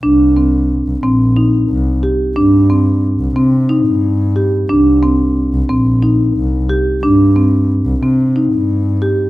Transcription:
<<
  \new Staff \with { instrumentName = "Marimba" } { \time 7/8 \key c \minor \tempo 4 = 90 d'8 c'4 c'8 ees'4 g'8 | d'8 c'4 c'8 ees'4 g'8 | d'8 c'4 c'8 ees'4 g'8 | d'8 c'4 c'8 ees'4 g'8 | }
  \new Staff \with { instrumentName = "Double bass" } { \clef bass \time 7/8 \key c \minor c,4~ c,16 c,16 bes,,4 c,8 r8 | g,4~ g,16 c,16 c8. g,4~ g,16 | c,4~ c,16 c,16 bes,,4 c,8 r8 | g,4~ g,16 c,16 c8. g,4~ g,16 | }
>>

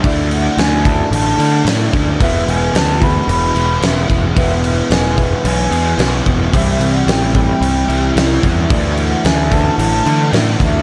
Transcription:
<<
  \new Staff \with { instrumentName = "Flute" } { \time 4/4 \key e \mixolydian \tempo 4 = 111 d''8 fis''8 gis''8 a''8 a''4 d''8. r16 | e''8 gis''8 a''8 b''8 b''4 e''8. r16 | e''8. r16 gis''4 gis''4. r8 | e''8. fis''16 g''8 g''2 r8 |
d''8 fis''8 gis''8 a''8 a''4 d''8. r16 | }
  \new Staff \with { instrumentName = "Clean electric guitar" } { \time 4/4 \key e \mixolydian <d a d' e'>4. <d a d' e'>2~ <d a d' e'>8 | <e gis b e'>4. <e gis b e'>2~ <e gis b e'>8 | <e gis b e'>4. <e gis b e'>2~ <e gis b e'>8 | <c g c' e'>4. <c g c' e'>2~ <c g c' e'>8 |
<d e a d'>4. <d e a d'>2~ <d e a d'>8 | }
  \new Staff \with { instrumentName = "Overdriven electric guitar" } { \time 4/4 \key e \mixolydian <d a d' e'>2~ <d a d' e'>8 <d a d' e'>8 <d a d' e'>4 | <e gis b e'>2~ <e gis b e'>8 <e gis b e'>8 <e gis b e'>4 | <e gis b e'>2~ <e gis b e'>8 <e gis b e'>8 <e gis b e'>4 | <c g c' e'>2~ <c g c' e'>8 <c g c' e'>8 <c g c' e'>4 |
<d e a e'>2~ <d e a e'>8 <d e a e'>8 <d e a e'>4 | }
  \new Staff \with { instrumentName = "Twelve-string acoustic guitar" } { \clef bass \time 4/4 \key e \mixolydian r1 | r1 | r1 | e8 c'8 e8 c'8 e8 e'8 c'8 e8 |
e8 a8 e8 a8 e8 d'8 a8 e8 | }
  \new Staff \with { instrumentName = "Picked electric bass" } { \clef bass \time 4/4 \key e \mixolydian d,4 d,4 a,,8 d8 a,8 d,8 | e,,8 e,,8 d,4 e,,8 e,,8 e,,8 e,,8 | e,,4 e,,4 b,,8 e,8 b,,8 e,,8 | c,8 c,8 a,,4 c,8 c,8 c,8 e,8 |
d,4 d,4 a,,8 d8 a,8 d,8 | }
  \new DrumStaff \with { instrumentName = "Drums" } \drummode { \time 4/4 <cymc bd>8 cymc8 <cymc sn>8 <cymc bd>8 cymc8 cymc8 <cymc sn>8 <cymc bd>8 | <cymc bd>8 cymc8 <cymc sn>8 <cymc bd>8 cymc8 cymc8 <cymc sn>8 <cymc bd>8 | <cymc bd>8 cymc8 <cymc sn>8 <cymc bd>8 cymc8 cymc8 <cymc sn>8 <cymc bd>8 | <cymc bd>8 cymc8 <cymc sn>8 <cymc bd>8 cymc8 cymc8 <cymc sn>8 <cymc bd>8 |
<cymc bd>8 cymc8 <cymc sn>8 <cymc bd>8 cymc8 cymc8 <cymc sn>8 <cymc bd>8 | }
>>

